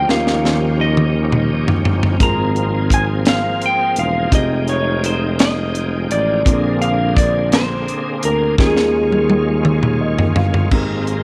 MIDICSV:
0, 0, Header, 1, 6, 480
1, 0, Start_track
1, 0, Key_signature, -4, "major"
1, 0, Tempo, 709220
1, 53, Time_signature, 6, 3, 24, 8
1, 7600, End_track
2, 0, Start_track
2, 0, Title_t, "Electric slide guitar"
2, 0, Program_c, 0, 29
2, 0, Note_on_c, 0, 79, 90
2, 71, Note_off_c, 0, 79, 0
2, 73, Note_on_c, 0, 77, 89
2, 549, Note_on_c, 0, 75, 85
2, 557, Note_off_c, 0, 77, 0
2, 1472, Note_off_c, 0, 75, 0
2, 1508, Note_on_c, 0, 82, 91
2, 1952, Note_off_c, 0, 82, 0
2, 1989, Note_on_c, 0, 80, 86
2, 2051, Note_off_c, 0, 80, 0
2, 2224, Note_on_c, 0, 77, 90
2, 2463, Note_off_c, 0, 77, 0
2, 2475, Note_on_c, 0, 79, 88
2, 2686, Note_off_c, 0, 79, 0
2, 2703, Note_on_c, 0, 77, 79
2, 2939, Note_off_c, 0, 77, 0
2, 2942, Note_on_c, 0, 75, 86
2, 3176, Note_on_c, 0, 73, 72
2, 3182, Note_off_c, 0, 75, 0
2, 3419, Note_off_c, 0, 73, 0
2, 3426, Note_on_c, 0, 72, 74
2, 3655, Note_on_c, 0, 75, 85
2, 3664, Note_off_c, 0, 72, 0
2, 4140, Note_on_c, 0, 74, 82
2, 4145, Note_off_c, 0, 75, 0
2, 4612, Note_on_c, 0, 77, 77
2, 4628, Note_off_c, 0, 74, 0
2, 4850, Note_on_c, 0, 74, 81
2, 4857, Note_off_c, 0, 77, 0
2, 5072, Note_off_c, 0, 74, 0
2, 5099, Note_on_c, 0, 72, 85
2, 5547, Note_off_c, 0, 72, 0
2, 5585, Note_on_c, 0, 70, 78
2, 5809, Note_off_c, 0, 70, 0
2, 5812, Note_on_c, 0, 68, 70
2, 6745, Note_off_c, 0, 68, 0
2, 7600, End_track
3, 0, Start_track
3, 0, Title_t, "Grand piano"
3, 0, Program_c, 1, 0
3, 0, Control_c, 1, 64, 127
3, 40, Note_on_c, 1, 61, 52
3, 49, Note_on_c, 1, 63, 53
3, 58, Note_on_c, 1, 65, 54
3, 59, Note_on_c, 1, 51, 53
3, 62, Control_c, 1, 64, 0
3, 64, Note_on_c, 1, 67, 55
3, 70, Note_on_c, 1, 70, 64
3, 198, Control_c, 1, 64, 127
3, 748, Note_off_c, 1, 51, 0
3, 1457, Note_off_c, 1, 61, 0
3, 1461, Note_off_c, 1, 63, 0
3, 1466, Note_off_c, 1, 65, 0
3, 1469, Note_off_c, 1, 67, 0
3, 1471, Note_on_c, 1, 60, 53
3, 1472, Note_off_c, 1, 70, 0
3, 1481, Note_on_c, 1, 63, 50
3, 1486, Note_on_c, 1, 44, 51
3, 1486, Note_on_c, 1, 65, 49
3, 1492, Note_on_c, 1, 68, 50
3, 1499, Control_c, 1, 64, 0
3, 1501, Note_on_c, 1, 70, 61
3, 1602, Control_c, 1, 64, 127
3, 2180, Note_off_c, 1, 44, 0
3, 2891, Note_off_c, 1, 60, 0
3, 2896, Note_off_c, 1, 63, 0
3, 2899, Note_off_c, 1, 65, 0
3, 2902, Note_off_c, 1, 68, 0
3, 2907, Note_off_c, 1, 70, 0
3, 2914, Note_on_c, 1, 48, 57
3, 2919, Note_on_c, 1, 63, 54
3, 2924, Note_on_c, 1, 65, 52
3, 2934, Note_on_c, 1, 67, 55
3, 2938, Control_c, 1, 64, 0
3, 2940, Note_on_c, 1, 68, 61
3, 3045, Control_c, 1, 64, 127
3, 4333, Note_off_c, 1, 48, 0
3, 4336, Note_off_c, 1, 63, 0
3, 4338, Note_off_c, 1, 65, 0
3, 4343, Note_off_c, 1, 67, 0
3, 4346, Note_off_c, 1, 68, 0
3, 4358, Note_on_c, 1, 60, 57
3, 4366, Note_on_c, 1, 62, 48
3, 4371, Note_on_c, 1, 46, 55
3, 4371, Note_on_c, 1, 65, 54
3, 4376, Control_c, 1, 64, 0
3, 4382, Note_on_c, 1, 68, 49
3, 4387, Note_on_c, 1, 70, 65
3, 4509, Control_c, 1, 64, 127
3, 5062, Note_off_c, 1, 46, 0
3, 5776, Note_off_c, 1, 60, 0
3, 5780, Note_off_c, 1, 62, 0
3, 5783, Note_off_c, 1, 65, 0
3, 5788, Note_off_c, 1, 68, 0
3, 5791, Note_off_c, 1, 70, 0
3, 5799, Note_on_c, 1, 61, 57
3, 5807, Note_on_c, 1, 63, 50
3, 5814, Note_on_c, 1, 51, 53
3, 5814, Note_on_c, 1, 65, 51
3, 5816, Control_c, 1, 64, 0
3, 5821, Note_on_c, 1, 68, 49
3, 5826, Note_on_c, 1, 70, 60
3, 5931, Control_c, 1, 64, 127
3, 6505, Note_off_c, 1, 51, 0
3, 6775, Note_on_c, 1, 75, 65
3, 6996, Note_off_c, 1, 75, 0
3, 7018, Note_on_c, 1, 77, 64
3, 7219, Note_off_c, 1, 61, 0
3, 7223, Note_off_c, 1, 63, 0
3, 7226, Note_off_c, 1, 65, 0
3, 7230, Note_off_c, 1, 68, 0
3, 7232, Note_off_c, 1, 70, 0
3, 7238, Note_off_c, 1, 77, 0
3, 7249, Note_on_c, 1, 60, 55
3, 7250, Note_on_c, 1, 63, 52
3, 7257, Note_on_c, 1, 67, 55
3, 7259, Note_on_c, 1, 44, 54
3, 7261, Control_c, 1, 64, 0
3, 7265, Note_on_c, 1, 68, 56
3, 7273, Note_on_c, 1, 70, 66
3, 7357, Control_c, 1, 64, 127
3, 7600, Note_off_c, 1, 44, 0
3, 7600, Note_off_c, 1, 60, 0
3, 7600, Note_off_c, 1, 63, 0
3, 7600, Note_off_c, 1, 67, 0
3, 7600, Note_off_c, 1, 68, 0
3, 7600, Note_off_c, 1, 70, 0
3, 7600, End_track
4, 0, Start_track
4, 0, Title_t, "Tonewheel organ"
4, 0, Program_c, 2, 16
4, 0, Note_on_c, 2, 53, 59
4, 0, Note_on_c, 2, 63, 55
4, 49, Note_on_c, 2, 67, 65
4, 52, Note_on_c, 2, 61, 56
4, 1468, Note_off_c, 2, 63, 0
4, 1474, Note_off_c, 2, 67, 0
4, 1476, Note_off_c, 2, 61, 0
4, 1492, Note_on_c, 2, 58, 50
4, 1494, Note_on_c, 2, 60, 51
4, 1498, Note_on_c, 2, 68, 64
4, 2915, Note_off_c, 2, 58, 0
4, 2916, Note_off_c, 2, 60, 0
4, 2917, Note_off_c, 2, 68, 0
4, 2920, Note_on_c, 2, 63, 55
4, 2921, Note_on_c, 2, 79, 70
4, 2928, Note_on_c, 2, 56, 53
4, 4344, Note_off_c, 2, 53, 0
4, 4349, Note_off_c, 2, 63, 0
4, 4349, Note_off_c, 2, 79, 0
4, 4353, Note_off_c, 2, 56, 0
4, 4362, Note_on_c, 2, 60, 56
4, 4364, Note_on_c, 2, 58, 55
4, 4366, Note_on_c, 2, 68, 71
4, 4367, Note_on_c, 2, 50, 61
4, 5791, Note_off_c, 2, 60, 0
4, 5792, Note_off_c, 2, 58, 0
4, 5793, Note_off_c, 2, 50, 0
4, 5793, Note_off_c, 2, 68, 0
4, 5812, Note_on_c, 2, 56, 55
4, 5816, Note_on_c, 2, 61, 55
4, 5819, Note_on_c, 2, 51, 66
4, 5820, Note_on_c, 2, 65, 64
4, 7238, Note_off_c, 2, 56, 0
4, 7240, Note_off_c, 2, 61, 0
4, 7242, Note_off_c, 2, 51, 0
4, 7242, Note_off_c, 2, 65, 0
4, 7256, Note_on_c, 2, 72, 47
4, 7258, Note_on_c, 2, 56, 54
4, 7260, Note_on_c, 2, 58, 49
4, 7264, Note_on_c, 2, 70, 60
4, 7600, Note_off_c, 2, 56, 0
4, 7600, Note_off_c, 2, 58, 0
4, 7600, Note_off_c, 2, 70, 0
4, 7600, Note_off_c, 2, 72, 0
4, 7600, End_track
5, 0, Start_track
5, 0, Title_t, "Tuba"
5, 0, Program_c, 3, 58
5, 59, Note_on_c, 3, 39, 104
5, 1227, Note_off_c, 3, 39, 0
5, 1250, Note_on_c, 3, 31, 75
5, 1471, Note_off_c, 3, 31, 0
5, 1489, Note_on_c, 3, 32, 102
5, 2480, Note_off_c, 3, 32, 0
5, 2683, Note_on_c, 3, 28, 86
5, 2906, Note_off_c, 3, 28, 0
5, 2923, Note_on_c, 3, 29, 102
5, 4098, Note_off_c, 3, 29, 0
5, 4125, Note_on_c, 3, 33, 80
5, 4347, Note_off_c, 3, 33, 0
5, 4372, Note_on_c, 3, 34, 102
5, 5361, Note_off_c, 3, 34, 0
5, 5574, Note_on_c, 3, 38, 71
5, 5792, Note_off_c, 3, 38, 0
5, 5812, Note_on_c, 3, 39, 102
5, 6985, Note_off_c, 3, 39, 0
5, 7008, Note_on_c, 3, 31, 78
5, 7230, Note_off_c, 3, 31, 0
5, 7249, Note_on_c, 3, 32, 88
5, 7600, Note_off_c, 3, 32, 0
5, 7600, End_track
6, 0, Start_track
6, 0, Title_t, "Drums"
6, 62, Note_on_c, 9, 38, 49
6, 130, Note_off_c, 9, 38, 0
6, 182, Note_on_c, 9, 38, 45
6, 250, Note_off_c, 9, 38, 0
6, 307, Note_on_c, 9, 38, 54
6, 374, Note_off_c, 9, 38, 0
6, 658, Note_on_c, 9, 47, 63
6, 726, Note_off_c, 9, 47, 0
6, 896, Note_on_c, 9, 45, 65
6, 964, Note_off_c, 9, 45, 0
6, 1137, Note_on_c, 9, 43, 72
6, 1205, Note_off_c, 9, 43, 0
6, 1254, Note_on_c, 9, 43, 79
6, 1322, Note_off_c, 9, 43, 0
6, 1374, Note_on_c, 9, 43, 76
6, 1442, Note_off_c, 9, 43, 0
6, 1490, Note_on_c, 9, 36, 94
6, 1492, Note_on_c, 9, 42, 77
6, 1558, Note_off_c, 9, 36, 0
6, 1560, Note_off_c, 9, 42, 0
6, 1732, Note_on_c, 9, 42, 36
6, 1800, Note_off_c, 9, 42, 0
6, 1965, Note_on_c, 9, 36, 76
6, 1973, Note_on_c, 9, 42, 85
6, 2033, Note_off_c, 9, 36, 0
6, 2041, Note_off_c, 9, 42, 0
6, 2203, Note_on_c, 9, 42, 71
6, 2211, Note_on_c, 9, 38, 99
6, 2271, Note_off_c, 9, 42, 0
6, 2279, Note_off_c, 9, 38, 0
6, 2447, Note_on_c, 9, 42, 45
6, 2515, Note_off_c, 9, 42, 0
6, 2681, Note_on_c, 9, 42, 64
6, 2749, Note_off_c, 9, 42, 0
6, 2924, Note_on_c, 9, 36, 93
6, 2924, Note_on_c, 9, 42, 76
6, 2992, Note_off_c, 9, 36, 0
6, 2992, Note_off_c, 9, 42, 0
6, 3165, Note_on_c, 9, 42, 42
6, 3232, Note_off_c, 9, 42, 0
6, 3410, Note_on_c, 9, 42, 83
6, 3477, Note_off_c, 9, 42, 0
6, 3649, Note_on_c, 9, 42, 74
6, 3657, Note_on_c, 9, 38, 99
6, 3717, Note_off_c, 9, 42, 0
6, 3725, Note_off_c, 9, 38, 0
6, 3891, Note_on_c, 9, 42, 44
6, 3959, Note_off_c, 9, 42, 0
6, 4134, Note_on_c, 9, 42, 62
6, 4201, Note_off_c, 9, 42, 0
6, 4371, Note_on_c, 9, 36, 93
6, 4378, Note_on_c, 9, 42, 85
6, 4439, Note_off_c, 9, 36, 0
6, 4446, Note_off_c, 9, 42, 0
6, 4614, Note_on_c, 9, 42, 44
6, 4681, Note_off_c, 9, 42, 0
6, 4849, Note_on_c, 9, 36, 91
6, 4859, Note_on_c, 9, 42, 80
6, 4917, Note_off_c, 9, 36, 0
6, 4927, Note_off_c, 9, 42, 0
6, 5091, Note_on_c, 9, 42, 73
6, 5099, Note_on_c, 9, 38, 101
6, 5159, Note_off_c, 9, 42, 0
6, 5167, Note_off_c, 9, 38, 0
6, 5335, Note_on_c, 9, 42, 44
6, 5403, Note_off_c, 9, 42, 0
6, 5568, Note_on_c, 9, 42, 62
6, 5636, Note_off_c, 9, 42, 0
6, 5809, Note_on_c, 9, 36, 96
6, 5814, Note_on_c, 9, 38, 51
6, 5877, Note_off_c, 9, 36, 0
6, 5882, Note_off_c, 9, 38, 0
6, 5932, Note_on_c, 9, 38, 47
6, 6000, Note_off_c, 9, 38, 0
6, 6175, Note_on_c, 9, 48, 52
6, 6243, Note_off_c, 9, 48, 0
6, 6291, Note_on_c, 9, 48, 69
6, 6359, Note_off_c, 9, 48, 0
6, 6530, Note_on_c, 9, 47, 71
6, 6598, Note_off_c, 9, 47, 0
6, 6651, Note_on_c, 9, 45, 63
6, 6719, Note_off_c, 9, 45, 0
6, 6893, Note_on_c, 9, 43, 73
6, 6961, Note_off_c, 9, 43, 0
6, 7010, Note_on_c, 9, 43, 86
6, 7078, Note_off_c, 9, 43, 0
6, 7133, Note_on_c, 9, 43, 76
6, 7201, Note_off_c, 9, 43, 0
6, 7250, Note_on_c, 9, 49, 72
6, 7252, Note_on_c, 9, 36, 90
6, 7318, Note_off_c, 9, 49, 0
6, 7319, Note_off_c, 9, 36, 0
6, 7493, Note_on_c, 9, 42, 38
6, 7561, Note_off_c, 9, 42, 0
6, 7600, End_track
0, 0, End_of_file